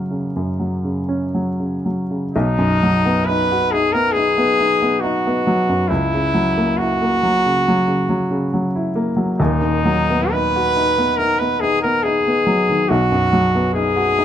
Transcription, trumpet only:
2.33 D#4
3.26 B4
3.72 G#4
3.92 A#4
4.12 G#4
5.00 F#4
5.88 E4
6.77 F#4
9.37 D#4
10.31 B4
11.17 A#4
11.39 B4
11.60 G#4
11.82 A#4
12.03 G#4
12.88 F#4
13.74 G#4

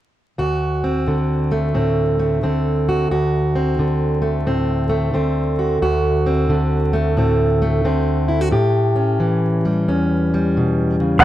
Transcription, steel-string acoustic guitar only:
0.38 D2 F#4
0.84 C4
1.08 D3
1.52 A3
1.74 A2 C4
2.19 A3
2.43 D3 C4
2.89 F#4
3.11 D2 F#4
3.55 C4
3.79 D3
4.22 A3
4.47 A2 C4
4.89 A3
5.13 D3 C4
5.59 F#4
5.82 D2 F#4
6.26 C4
6.50 D3
6.93 A3
7.17 A2 C4
7.62 A3
7.85 D3 C4
8.28 E4
8.41 F#4
8.51 A2 G4
8.96 C#4
9.20 E3
9.65 G3
9.88 E2 C#4
10.34 G3
10.57 B2
11.00 C#3

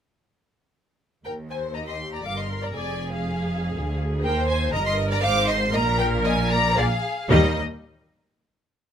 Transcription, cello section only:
1.25 D#2
2.26 G2
2.75 F2
3.75 D2
4.24 D#2
4.74 G2
5.23 G#2
5.74 A#2
6.78 A#2
7.30 D#3

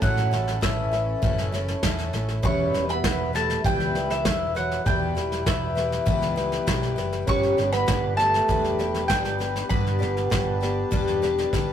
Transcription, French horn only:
0.02 F#3
0.64 E3
2.44 C#4
2.89 B3
3.34 A3
3.65 G3
4.11 E3
4.55 F#3
4.85 G3
5.46 E3
7.27 C#4
7.73 B3
8.17 A3
9.07 G3
9.67 B3

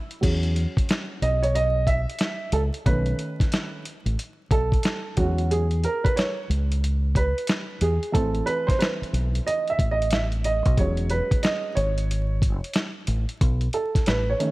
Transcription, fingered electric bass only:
0.23 E2
1.22 B1
2.52 C#2
2.86 B1
4.06 A1
4.51 B1
5.17 E2
6.49 C#2
7.81 E2
8.15 A1
9.02 muted fingered electric bass stroke
9.13 B1
9.79 A1
10.66 B1
10.78 E1
11.76 G#1
13.08 A1
13.41 B1
14.07 A1

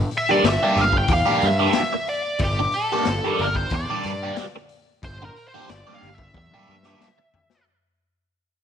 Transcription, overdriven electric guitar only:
0.29 G3 A#3 D4 G4
0.48 muted overdriven electric guitar stroke
0.63 G3 A#3 D4 G4
1.12 muted overdriven electric guitar stroke
1.26 G3 A#3 D4 G4
1.59 G3 A#3 D4 G4
1.93 muted overdriven electric guitar stroke
2.59 muted overdriven electric guitar stroke
2.93 G3 A#3 D4 G4
3.08 muted overdriven electric guitar stroke
3.24 G3 A#3 D4 G4
3.73 muted overdriven electric guitar stroke
3.90 G3 A#3 D4 G4
4.23 G3 A#3 D4 G4
4.55 muted overdriven electric guitar stroke
5.23 muted overdriven electric guitar stroke
5.55 G3 A#3 D4 G4
5.71 muted overdriven electric guitar stroke
5.87 G3 A#3 D4 G4
6.37 muted overdriven electric guitar stroke
6.54 G3 A#3 D4 G4
6.85 G3 A#3 D4 G4
7.18 muted overdriven electric guitar stroke

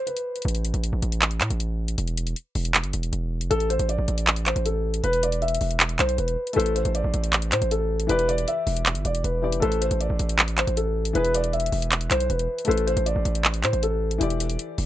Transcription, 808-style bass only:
0.45 A1
0.74 A1
0.93 A1
1.02 A1
1.41 A2
1.50 A1
1.98 E1
2.55 E1
2.84 G1
2.94 E1
3.13 E1
3.41 F1
3.51 A1
3.79 A1
3.98 A1
4.08 A1
4.56 A1
5.04 E1
5.61 E1
5.99 B1
6.18 E1
6.57 A1
6.85 A1
7.04 A1
7.14 A1
7.52 A2
7.62 A1
8.09 E1
8.67 E1
8.95 G1
9.05 E1
9.24 E1
9.53 F1
9.62 A1
9.91 A1
10.10 A1
10.19 A1
10.67 A1
11.15 E1
11.72 E1
12.11 B1
12.30 E1
12.68 A1
12.97 A1
13.16 A1
13.25 A1
13.63 A2
13.73 A1
14.21 E1
14.78 E1

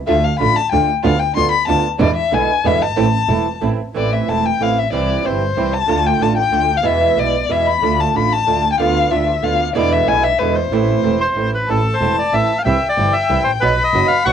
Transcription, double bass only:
0.08 D2
0.41 A1
0.73 D2
1.05 D2
1.37 D2
1.69 D2
2.00 E2
2.32 B1
2.65 E2
2.80 G1
2.96 A1
3.29 E1
3.63 A1
3.95 A1
4.28 E1
4.61 A1
4.93 C2
5.26 G1
5.57 C2
5.88 D2
6.20 A1
6.52 D2
6.84 E2
7.17 B1
7.49 E2
7.83 D2
8.15 A1
8.48 D2
8.80 D2
9.12 D2
9.44 D2
9.76 E2
10.08 B1
10.41 E2
10.71 A1
11.04 E1
11.36 A1
11.68 A1
12.01 E1
12.33 A1
12.66 C2
12.98 G1
13.30 C2
13.45 A1
13.62 B1
13.94 F#1
14.26 B1

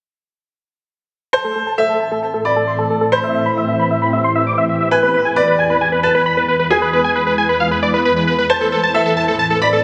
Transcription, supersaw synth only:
1.33 A5
1.44 A4
1.55 A4
1.67 A5
1.78 A4
1.89 A4
2.00 A5
2.11 A4
2.23 A5
2.34 A4
2.45 B5
2.56 A4
2.67 C6
2.79 A4
2.90 A4
3.01 A4
3.12 B5
3.24 E5
3.35 E5
3.46 B5
3.57 E5
3.68 E5
3.79 B5
3.91 E5
4.02 B5
4.13 E5
4.24 C6
4.35 E5
4.47 D6
4.58 E5
4.69 E5
4.80 E5
4.92 G#5
5.03 B4
5.14 B4
5.25 G#5
5.36 B4
5.47 B4
5.59 G#5
5.70 B4
5.81 G#5
5.92 B4
6.04 A5
6.15 B4
6.26 B5
6.37 B4
6.48 B4
6.59 B4
6.71 G#5
6.82 B4
6.93 B4
7.04 G#5
7.16 B4
7.27 B4
7.38 G#5
7.49 B4
7.60 F5
7.71 B4
7.83 D5
7.94 B4
8.05 B4
8.16 B4
8.27 B4
8.38 B4
8.50 A5
8.61 A4
8.72 A4
8.83 A5
8.94 A4
9.06 A4
9.17 A5
9.28 A4
9.39 A5
9.50 A4
9.61 B5
9.73 A4

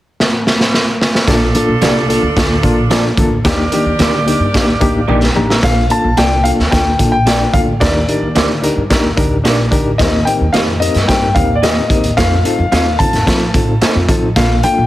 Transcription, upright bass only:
1.27 A#1
1.68 A#1
1.82 C2
2.22 D2
2.36 D2
2.63 A#1
3.17 D2
3.45 D#2
3.85 D#2
3.99 D2
4.39 G2
4.54 D#2
4.81 D2
5.08 A#1
5.35 A1
5.63 A#1
6.04 A#1
6.18 C2
6.59 D2
6.72 D2
6.99 A#1
7.54 D2
7.81 D#2
8.22 D#2
8.35 D2
8.76 G2
8.90 D#2
9.17 D2
9.45 A#1
9.72 D2
9.99 D#2
10.40 D#2
10.54 F2
10.95 G2
11.09 G2
11.36 D#2
11.90 D#2
12.17 F2
12.59 F2
12.72 D#2
13.13 F2
13.27 F3
13.54 A2
13.81 muted upright bass stroke
13.95 F2
14.09 F3
14.36 A#1
14.78 A#1

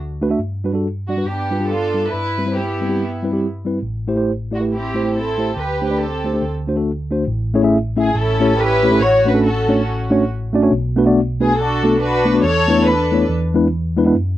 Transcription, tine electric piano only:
Already playing: D2 D3
0.21 A3 D4 F#4 B4
0.30 A3 D4 F#4 E5
0.38 G2
0.64 G3 D4 F#4 B4
0.73 G3 D4 F#4 A4
1.09 G3 D4 F#4 D5
1.17 G3 D4 F#4 B4
1.25 G2
1.51 G3 D4 F4 B4
1.59 G3 D4 F4 G4
1.94 G3 D4 F4 A4
2.13 G2
2.38 G3 C4 E4 B4
2.46 G3 C4 E4 C5
2.81 G3 C4 E4 B4
2.88 G3 C4 E4 G4
3.23 G3 C4 E4 B4
3.32 G3 C4 E4 G4
3.65 G3 C4 E4 B4
3.83 A1 A2
4.08 A3 E4 G4 C5
4.16 A3 E4 G4 C5
4.51 A3 E4 G4 D5
4.60 A3 E4 G4 B4
4.94 A3 E4 G4 C5
5.03 A3 E4 G4 C5
5.38 A3 E4 G4 C5
5.56 D2 D3
5.81 A3 D4 G4 C5
5.90 A3 D4 G4 D5
6.24 A3 D4 G4 C5
6.33 A3 D4 G4 C5
6.41 D2 D3
6.67 A3 D4 F#4 C5
6.76 A3 D4 F#4 A4
7.11 A3 D4 F#4 C5
7.27 A1 A2
7.54 A3 C#4 E4 G#4 C#5
7.62 A3 C#4 E4 G#4 E5
7.97 A3 C#4 E4 G#4 E5
8.15 A1 A2
8.40 A3 C#4 E4 G4 C#5
8.83 A3 C#4 E4 G4 C#5
8.90 A3 C#4 E4 G4 A4
8.99 A1 A2
9.25 A3 C#4 D4 F#4 C#5
9.33 A3 C#4 D4 F#4 A4
9.68 A3 C#4 D4 F#4 C#5
10.10 A3 C#4 D4 F#4 C#5
10.53 A3 C#4 D4 F#4 D5
10.62 A3 C#4 D4 F#4 C#5
10.71 B1 B2
10.96 A3 B3 D4 F#4 B4
11.05 A3 B3 D4 F#4 D5
11.40 A3 B3 D4 F#4 B4
11.83 A3 B3 D4 F#4 A4
12.25 A3 B3 D4 F#4 B4
12.33 A3 B3 D4 F#4 B4
12.42 E2 E3
12.68 A3 B3 D4 E4 B4
12.77 A3 B3 D4 E4 C#5
13.12 A3 B3 D4 E4 C#5
13.29 E2 E3
13.54 G#3 B3 D4 E4 B4
13.97 G#3 B3 D4 E4 B4
14.05 G#3 B3 D4 E4 B4
14.15 F#2

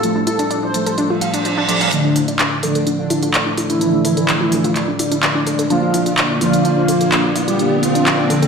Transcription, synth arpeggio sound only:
0.16 D4
0.27 E4
0.39 D4
0.51 D4
0.63 D4
0.74 A4
0.87 A4
0.98 D4
1.10 F4
1.22 F5
1.34 D4
1.45 D4
1.57 D4
1.69 D5
1.81 F5
2.05 D4
2.16 E4
2.28 D4
2.40 D4
2.52 D4
2.63 A4
2.76 A4
2.87 D4
2.99 F4
3.10 E4
3.23 F4
3.46 D4
3.58 E4
3.70 D4
3.81 D4
3.94 D4
4.05 A4
4.17 A4
4.29 D4
4.41 F4
4.52 E4
4.64 F4
4.88 D4
5.00 E4
5.12 D4
5.23 D4
5.35 D4
5.47 A4
5.59 A4
5.70 D4
5.82 F4
5.94 E4
6.06 F4
6.30 D4
6.41 E4
6.53 D4
6.65 D4
6.77 D4
6.89 A4
7.01 A4
7.12 D4
7.24 F4
7.36 E4
7.48 F4
7.71 D4
7.83 E4
7.95 D4
8.06 D4
8.19 D4
8.30 A4
8.42 A4

